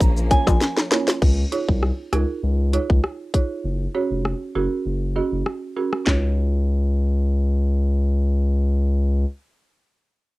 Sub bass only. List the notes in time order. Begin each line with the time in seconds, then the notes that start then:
0.01 A#1
0.47 A#1
1.22 C#2
1.69 C2
2.13 C#2
2.43 C#2
2.90 C#2
3.64 F#1
4.11 F1
4.55 F#1
4.86 F#1
5.32 F#1
6.07 C#2